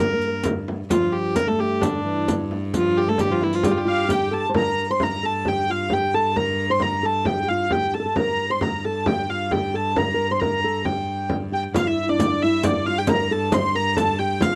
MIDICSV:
0, 0, Header, 1, 6, 480
1, 0, Start_track
1, 0, Tempo, 454545
1, 953, Time_signature, 2, 2, 24, 8
1, 8145, Tempo, 446429
1, 15498, End_track
2, 0, Start_track
2, 0, Title_t, "Hurdy-gurdy"
2, 0, Program_c, 0, 110
2, 0, Note_on_c, 0, 70, 94
2, 441, Note_off_c, 0, 70, 0
2, 950, Note_on_c, 0, 65, 88
2, 1192, Note_off_c, 0, 65, 0
2, 1192, Note_on_c, 0, 67, 95
2, 1434, Note_off_c, 0, 67, 0
2, 1434, Note_on_c, 0, 70, 104
2, 1559, Note_off_c, 0, 70, 0
2, 1559, Note_on_c, 0, 69, 94
2, 1687, Note_off_c, 0, 69, 0
2, 1687, Note_on_c, 0, 67, 100
2, 1921, Note_off_c, 0, 67, 0
2, 1921, Note_on_c, 0, 62, 82
2, 2402, Note_off_c, 0, 62, 0
2, 2912, Note_on_c, 0, 65, 92
2, 3143, Note_off_c, 0, 65, 0
2, 3143, Note_on_c, 0, 67, 99
2, 3259, Note_off_c, 0, 67, 0
2, 3259, Note_on_c, 0, 69, 100
2, 3379, Note_off_c, 0, 69, 0
2, 3379, Note_on_c, 0, 67, 98
2, 3504, Note_off_c, 0, 67, 0
2, 3504, Note_on_c, 0, 65, 97
2, 3624, Note_off_c, 0, 65, 0
2, 3624, Note_on_c, 0, 64, 84
2, 3750, Note_off_c, 0, 64, 0
2, 3750, Note_on_c, 0, 65, 91
2, 3853, Note_off_c, 0, 65, 0
2, 3853, Note_on_c, 0, 67, 85
2, 3919, Note_off_c, 0, 67, 0
2, 3919, Note_on_c, 0, 65, 73
2, 3985, Note_off_c, 0, 65, 0
2, 3985, Note_on_c, 0, 67, 88
2, 4092, Note_on_c, 0, 77, 83
2, 4340, Note_off_c, 0, 77, 0
2, 4340, Note_on_c, 0, 79, 91
2, 4569, Note_off_c, 0, 67, 0
2, 4576, Note_off_c, 0, 79, 0
2, 4576, Note_on_c, 0, 81, 101
2, 4681, Note_off_c, 0, 81, 0
2, 4827, Note_on_c, 0, 82, 95
2, 5183, Note_off_c, 0, 82, 0
2, 5183, Note_on_c, 0, 84, 93
2, 5309, Note_off_c, 0, 84, 0
2, 5309, Note_on_c, 0, 82, 90
2, 5551, Note_off_c, 0, 82, 0
2, 5551, Note_on_c, 0, 81, 86
2, 5787, Note_off_c, 0, 81, 0
2, 5787, Note_on_c, 0, 79, 90
2, 6029, Note_off_c, 0, 79, 0
2, 6029, Note_on_c, 0, 77, 83
2, 6266, Note_off_c, 0, 77, 0
2, 6266, Note_on_c, 0, 79, 87
2, 6486, Note_on_c, 0, 81, 91
2, 6491, Note_off_c, 0, 79, 0
2, 6720, Note_off_c, 0, 81, 0
2, 6720, Note_on_c, 0, 82, 97
2, 7086, Note_off_c, 0, 82, 0
2, 7086, Note_on_c, 0, 84, 92
2, 7205, Note_off_c, 0, 84, 0
2, 7205, Note_on_c, 0, 82, 88
2, 7449, Note_off_c, 0, 82, 0
2, 7449, Note_on_c, 0, 81, 89
2, 7664, Note_off_c, 0, 81, 0
2, 7664, Note_on_c, 0, 79, 82
2, 7906, Note_off_c, 0, 79, 0
2, 7906, Note_on_c, 0, 77, 74
2, 8152, Note_off_c, 0, 77, 0
2, 8152, Note_on_c, 0, 79, 80
2, 8388, Note_on_c, 0, 81, 81
2, 8391, Note_off_c, 0, 79, 0
2, 8631, Note_off_c, 0, 81, 0
2, 8631, Note_on_c, 0, 82, 86
2, 9000, Note_off_c, 0, 82, 0
2, 9000, Note_on_c, 0, 84, 87
2, 9126, Note_off_c, 0, 84, 0
2, 9126, Note_on_c, 0, 82, 80
2, 9361, Note_off_c, 0, 82, 0
2, 9361, Note_on_c, 0, 81, 90
2, 9609, Note_off_c, 0, 81, 0
2, 9609, Note_on_c, 0, 79, 81
2, 9850, Note_off_c, 0, 79, 0
2, 9850, Note_on_c, 0, 77, 73
2, 10090, Note_off_c, 0, 77, 0
2, 10090, Note_on_c, 0, 79, 81
2, 10338, Note_off_c, 0, 79, 0
2, 10338, Note_on_c, 0, 81, 86
2, 10580, Note_off_c, 0, 81, 0
2, 10580, Note_on_c, 0, 82, 87
2, 10941, Note_off_c, 0, 82, 0
2, 10941, Note_on_c, 0, 84, 91
2, 11032, Note_on_c, 0, 82, 84
2, 11051, Note_off_c, 0, 84, 0
2, 11525, Note_off_c, 0, 82, 0
2, 11525, Note_on_c, 0, 79, 73
2, 12004, Note_off_c, 0, 79, 0
2, 12256, Note_on_c, 0, 79, 85
2, 12361, Note_off_c, 0, 79, 0
2, 12492, Note_on_c, 0, 77, 91
2, 12620, Note_off_c, 0, 77, 0
2, 12620, Note_on_c, 0, 76, 86
2, 12855, Note_off_c, 0, 76, 0
2, 12855, Note_on_c, 0, 74, 89
2, 12976, Note_off_c, 0, 74, 0
2, 12976, Note_on_c, 0, 74, 93
2, 13211, Note_off_c, 0, 74, 0
2, 13211, Note_on_c, 0, 76, 98
2, 13443, Note_on_c, 0, 74, 91
2, 13445, Note_off_c, 0, 76, 0
2, 13682, Note_off_c, 0, 74, 0
2, 13682, Note_on_c, 0, 77, 101
2, 13812, Note_off_c, 0, 77, 0
2, 13812, Note_on_c, 0, 79, 94
2, 13930, Note_off_c, 0, 79, 0
2, 13930, Note_on_c, 0, 82, 107
2, 14177, Note_off_c, 0, 82, 0
2, 14177, Note_on_c, 0, 81, 110
2, 14405, Note_off_c, 0, 81, 0
2, 14405, Note_on_c, 0, 84, 118
2, 14642, Note_off_c, 0, 84, 0
2, 14642, Note_on_c, 0, 82, 110
2, 14870, Note_off_c, 0, 82, 0
2, 14870, Note_on_c, 0, 81, 112
2, 15110, Note_off_c, 0, 81, 0
2, 15110, Note_on_c, 0, 79, 104
2, 15359, Note_off_c, 0, 79, 0
2, 15359, Note_on_c, 0, 77, 106
2, 15498, Note_off_c, 0, 77, 0
2, 15498, End_track
3, 0, Start_track
3, 0, Title_t, "Nylon-string guitar"
3, 0, Program_c, 1, 24
3, 0, Note_on_c, 1, 58, 82
3, 126, Note_off_c, 1, 58, 0
3, 143, Note_on_c, 1, 58, 71
3, 280, Note_off_c, 1, 58, 0
3, 292, Note_on_c, 1, 58, 77
3, 449, Note_off_c, 1, 58, 0
3, 953, Note_on_c, 1, 53, 88
3, 1431, Note_on_c, 1, 58, 92
3, 1450, Note_off_c, 1, 53, 0
3, 1552, Note_off_c, 1, 58, 0
3, 1556, Note_on_c, 1, 57, 89
3, 1927, Note_on_c, 1, 50, 74
3, 1929, Note_off_c, 1, 57, 0
3, 2160, Note_off_c, 1, 50, 0
3, 2164, Note_on_c, 1, 52, 66
3, 2386, Note_off_c, 1, 52, 0
3, 2892, Note_on_c, 1, 53, 84
3, 3250, Note_on_c, 1, 57, 89
3, 3258, Note_off_c, 1, 53, 0
3, 3358, Note_off_c, 1, 57, 0
3, 3362, Note_on_c, 1, 55, 84
3, 3474, Note_off_c, 1, 55, 0
3, 3485, Note_on_c, 1, 53, 82
3, 3599, Note_off_c, 1, 53, 0
3, 3599, Note_on_c, 1, 52, 78
3, 3723, Note_off_c, 1, 52, 0
3, 3723, Note_on_c, 1, 53, 77
3, 3844, Note_off_c, 1, 53, 0
3, 3855, Note_on_c, 1, 55, 88
3, 3958, Note_off_c, 1, 55, 0
3, 3971, Note_on_c, 1, 55, 76
3, 4069, Note_on_c, 1, 65, 82
3, 4311, Note_off_c, 1, 65, 0
3, 4315, Note_on_c, 1, 67, 78
3, 4520, Note_off_c, 1, 55, 0
3, 4549, Note_off_c, 1, 67, 0
3, 4554, Note_on_c, 1, 69, 82
3, 4738, Note_off_c, 1, 69, 0
3, 4746, Note_on_c, 1, 72, 68
3, 4801, Note_off_c, 1, 72, 0
3, 4805, Note_on_c, 1, 70, 85
3, 5174, Note_off_c, 1, 70, 0
3, 5179, Note_on_c, 1, 72, 84
3, 5295, Note_off_c, 1, 72, 0
3, 5295, Note_on_c, 1, 70, 76
3, 5520, Note_off_c, 1, 70, 0
3, 5524, Note_on_c, 1, 69, 79
3, 5769, Note_off_c, 1, 69, 0
3, 5769, Note_on_c, 1, 67, 76
3, 6011, Note_off_c, 1, 67, 0
3, 6018, Note_on_c, 1, 65, 72
3, 6248, Note_off_c, 1, 65, 0
3, 6252, Note_on_c, 1, 67, 76
3, 6487, Note_on_c, 1, 69, 85
3, 6491, Note_off_c, 1, 67, 0
3, 6717, Note_off_c, 1, 69, 0
3, 6721, Note_on_c, 1, 70, 83
3, 7072, Note_off_c, 1, 70, 0
3, 7076, Note_on_c, 1, 72, 77
3, 7175, Note_off_c, 1, 72, 0
3, 7175, Note_on_c, 1, 70, 80
3, 7420, Note_off_c, 1, 70, 0
3, 7425, Note_on_c, 1, 69, 74
3, 7662, Note_on_c, 1, 67, 80
3, 7674, Note_off_c, 1, 69, 0
3, 7832, Note_off_c, 1, 67, 0
3, 7851, Note_on_c, 1, 67, 56
3, 7909, Note_off_c, 1, 67, 0
3, 7925, Note_on_c, 1, 65, 69
3, 8150, Note_off_c, 1, 65, 0
3, 8154, Note_on_c, 1, 67, 72
3, 8396, Note_on_c, 1, 69, 77
3, 8399, Note_off_c, 1, 67, 0
3, 8437, Note_off_c, 1, 69, 0
3, 8450, Note_on_c, 1, 69, 63
3, 8501, Note_off_c, 1, 69, 0
3, 8513, Note_on_c, 1, 69, 72
3, 8636, Note_off_c, 1, 69, 0
3, 8652, Note_on_c, 1, 70, 78
3, 8988, Note_off_c, 1, 70, 0
3, 8993, Note_on_c, 1, 72, 76
3, 9127, Note_off_c, 1, 72, 0
3, 9127, Note_on_c, 1, 70, 70
3, 9365, Note_off_c, 1, 70, 0
3, 9369, Note_on_c, 1, 69, 72
3, 9587, Note_off_c, 1, 69, 0
3, 9608, Note_on_c, 1, 67, 72
3, 9847, Note_off_c, 1, 67, 0
3, 9852, Note_on_c, 1, 65, 64
3, 10087, Note_off_c, 1, 65, 0
3, 10091, Note_on_c, 1, 67, 67
3, 10325, Note_on_c, 1, 69, 74
3, 10333, Note_off_c, 1, 67, 0
3, 10562, Note_off_c, 1, 69, 0
3, 10566, Note_on_c, 1, 70, 75
3, 10640, Note_off_c, 1, 70, 0
3, 10757, Note_on_c, 1, 70, 84
3, 10932, Note_off_c, 1, 70, 0
3, 10936, Note_on_c, 1, 72, 69
3, 11048, Note_off_c, 1, 72, 0
3, 11052, Note_on_c, 1, 70, 70
3, 11271, Note_off_c, 1, 70, 0
3, 11296, Note_on_c, 1, 69, 75
3, 11523, Note_off_c, 1, 69, 0
3, 11527, Note_on_c, 1, 67, 67
3, 11971, Note_off_c, 1, 67, 0
3, 12240, Note_on_c, 1, 67, 72
3, 12488, Note_off_c, 1, 67, 0
3, 12489, Note_on_c, 1, 65, 91
3, 12613, Note_off_c, 1, 65, 0
3, 12613, Note_on_c, 1, 64, 84
3, 12847, Note_off_c, 1, 64, 0
3, 12851, Note_on_c, 1, 62, 79
3, 12965, Note_off_c, 1, 62, 0
3, 12978, Note_on_c, 1, 62, 77
3, 13216, Note_off_c, 1, 62, 0
3, 13220, Note_on_c, 1, 64, 86
3, 13450, Note_on_c, 1, 62, 90
3, 13457, Note_off_c, 1, 64, 0
3, 13691, Note_off_c, 1, 62, 0
3, 13697, Note_on_c, 1, 65, 83
3, 13810, Note_off_c, 1, 65, 0
3, 13810, Note_on_c, 1, 67, 89
3, 13927, Note_off_c, 1, 67, 0
3, 13933, Note_on_c, 1, 70, 89
3, 14148, Note_off_c, 1, 70, 0
3, 14165, Note_on_c, 1, 69, 94
3, 14398, Note_off_c, 1, 69, 0
3, 14403, Note_on_c, 1, 72, 105
3, 14631, Note_off_c, 1, 72, 0
3, 14635, Note_on_c, 1, 70, 93
3, 14864, Note_off_c, 1, 70, 0
3, 14869, Note_on_c, 1, 69, 85
3, 15108, Note_off_c, 1, 69, 0
3, 15113, Note_on_c, 1, 67, 87
3, 15340, Note_on_c, 1, 65, 87
3, 15357, Note_off_c, 1, 67, 0
3, 15498, Note_off_c, 1, 65, 0
3, 15498, End_track
4, 0, Start_track
4, 0, Title_t, "Viola da gamba"
4, 0, Program_c, 2, 42
4, 0, Note_on_c, 2, 43, 73
4, 954, Note_off_c, 2, 43, 0
4, 960, Note_on_c, 2, 43, 77
4, 4794, Note_off_c, 2, 43, 0
4, 4801, Note_on_c, 2, 43, 68
4, 8626, Note_off_c, 2, 43, 0
4, 8632, Note_on_c, 2, 43, 67
4, 12483, Note_off_c, 2, 43, 0
4, 12496, Note_on_c, 2, 43, 83
4, 15498, Note_off_c, 2, 43, 0
4, 15498, End_track
5, 0, Start_track
5, 0, Title_t, "Frame drum"
5, 236, Note_on_c, 9, 64, 29
5, 341, Note_off_c, 9, 64, 0
5, 478, Note_on_c, 9, 64, 92
5, 583, Note_off_c, 9, 64, 0
5, 721, Note_on_c, 9, 64, 74
5, 827, Note_off_c, 9, 64, 0
5, 955, Note_on_c, 9, 64, 94
5, 1060, Note_off_c, 9, 64, 0
5, 1440, Note_on_c, 9, 64, 86
5, 1545, Note_off_c, 9, 64, 0
5, 1678, Note_on_c, 9, 64, 64
5, 1783, Note_off_c, 9, 64, 0
5, 1919, Note_on_c, 9, 64, 85
5, 2025, Note_off_c, 9, 64, 0
5, 2409, Note_on_c, 9, 64, 86
5, 2515, Note_off_c, 9, 64, 0
5, 2651, Note_on_c, 9, 64, 60
5, 2757, Note_off_c, 9, 64, 0
5, 2889, Note_on_c, 9, 64, 78
5, 2995, Note_off_c, 9, 64, 0
5, 3358, Note_on_c, 9, 64, 83
5, 3464, Note_off_c, 9, 64, 0
5, 3600, Note_on_c, 9, 64, 64
5, 3706, Note_off_c, 9, 64, 0
5, 3837, Note_on_c, 9, 64, 94
5, 3942, Note_off_c, 9, 64, 0
5, 4319, Note_on_c, 9, 64, 84
5, 4425, Note_off_c, 9, 64, 0
5, 4798, Note_on_c, 9, 64, 92
5, 4904, Note_off_c, 9, 64, 0
5, 5043, Note_on_c, 9, 64, 28
5, 5149, Note_off_c, 9, 64, 0
5, 5277, Note_on_c, 9, 64, 87
5, 5383, Note_off_c, 9, 64, 0
5, 5520, Note_on_c, 9, 64, 28
5, 5626, Note_off_c, 9, 64, 0
5, 5754, Note_on_c, 9, 64, 82
5, 5860, Note_off_c, 9, 64, 0
5, 5999, Note_on_c, 9, 64, 25
5, 6104, Note_off_c, 9, 64, 0
5, 6228, Note_on_c, 9, 64, 73
5, 6333, Note_off_c, 9, 64, 0
5, 6716, Note_on_c, 9, 64, 74
5, 6821, Note_off_c, 9, 64, 0
5, 6951, Note_on_c, 9, 64, 23
5, 7057, Note_off_c, 9, 64, 0
5, 7178, Note_on_c, 9, 64, 75
5, 7283, Note_off_c, 9, 64, 0
5, 7420, Note_on_c, 9, 64, 27
5, 7526, Note_off_c, 9, 64, 0
5, 7657, Note_on_c, 9, 64, 87
5, 7762, Note_off_c, 9, 64, 0
5, 8136, Note_on_c, 9, 64, 86
5, 8244, Note_off_c, 9, 64, 0
5, 8623, Note_on_c, 9, 64, 90
5, 8731, Note_off_c, 9, 64, 0
5, 8867, Note_on_c, 9, 64, 29
5, 8975, Note_off_c, 9, 64, 0
5, 9109, Note_on_c, 9, 64, 88
5, 9216, Note_off_c, 9, 64, 0
5, 9351, Note_on_c, 9, 64, 29
5, 9458, Note_off_c, 9, 64, 0
5, 9593, Note_on_c, 9, 64, 99
5, 9700, Note_off_c, 9, 64, 0
5, 9840, Note_on_c, 9, 64, 27
5, 9948, Note_off_c, 9, 64, 0
5, 10080, Note_on_c, 9, 64, 92
5, 10187, Note_off_c, 9, 64, 0
5, 10331, Note_on_c, 9, 64, 28
5, 10438, Note_off_c, 9, 64, 0
5, 10563, Note_on_c, 9, 64, 97
5, 10671, Note_off_c, 9, 64, 0
5, 10808, Note_on_c, 9, 64, 27
5, 10916, Note_off_c, 9, 64, 0
5, 11048, Note_on_c, 9, 64, 84
5, 11155, Note_off_c, 9, 64, 0
5, 11284, Note_on_c, 9, 64, 24
5, 11392, Note_off_c, 9, 64, 0
5, 11518, Note_on_c, 9, 64, 74
5, 11625, Note_off_c, 9, 64, 0
5, 11996, Note_on_c, 9, 64, 79
5, 12104, Note_off_c, 9, 64, 0
5, 12478, Note_on_c, 9, 64, 95
5, 12586, Note_off_c, 9, 64, 0
5, 12962, Note_on_c, 9, 64, 97
5, 13069, Note_off_c, 9, 64, 0
5, 13202, Note_on_c, 9, 64, 32
5, 13310, Note_off_c, 9, 64, 0
5, 13439, Note_on_c, 9, 64, 114
5, 13546, Note_off_c, 9, 64, 0
5, 13910, Note_on_c, 9, 64, 113
5, 14018, Note_off_c, 9, 64, 0
5, 14154, Note_on_c, 9, 64, 34
5, 14262, Note_off_c, 9, 64, 0
5, 14387, Note_on_c, 9, 64, 106
5, 14495, Note_off_c, 9, 64, 0
5, 14868, Note_on_c, 9, 64, 98
5, 14976, Note_off_c, 9, 64, 0
5, 15343, Note_on_c, 9, 64, 98
5, 15450, Note_off_c, 9, 64, 0
5, 15498, End_track
6, 0, Start_track
6, 0, Title_t, "Riq"
6, 227, Note_on_c, 9, 54, 19
6, 332, Note_off_c, 9, 54, 0
6, 460, Note_on_c, 9, 54, 65
6, 566, Note_off_c, 9, 54, 0
6, 958, Note_on_c, 9, 54, 75
6, 1063, Note_off_c, 9, 54, 0
6, 1435, Note_on_c, 9, 54, 63
6, 1540, Note_off_c, 9, 54, 0
6, 1932, Note_on_c, 9, 54, 65
6, 2037, Note_off_c, 9, 54, 0
6, 2412, Note_on_c, 9, 54, 59
6, 2518, Note_off_c, 9, 54, 0
6, 2892, Note_on_c, 9, 54, 58
6, 2997, Note_off_c, 9, 54, 0
6, 3369, Note_on_c, 9, 54, 60
6, 3475, Note_off_c, 9, 54, 0
6, 3848, Note_on_c, 9, 54, 62
6, 3954, Note_off_c, 9, 54, 0
6, 4329, Note_on_c, 9, 54, 59
6, 4435, Note_off_c, 9, 54, 0
6, 12493, Note_on_c, 9, 54, 74
6, 12600, Note_off_c, 9, 54, 0
6, 12968, Note_on_c, 9, 54, 73
6, 13075, Note_off_c, 9, 54, 0
6, 13436, Note_on_c, 9, 54, 71
6, 13544, Note_off_c, 9, 54, 0
6, 13906, Note_on_c, 9, 54, 68
6, 14014, Note_off_c, 9, 54, 0
6, 14391, Note_on_c, 9, 54, 73
6, 14499, Note_off_c, 9, 54, 0
6, 14880, Note_on_c, 9, 54, 69
6, 14988, Note_off_c, 9, 54, 0
6, 15358, Note_on_c, 9, 54, 67
6, 15465, Note_off_c, 9, 54, 0
6, 15498, End_track
0, 0, End_of_file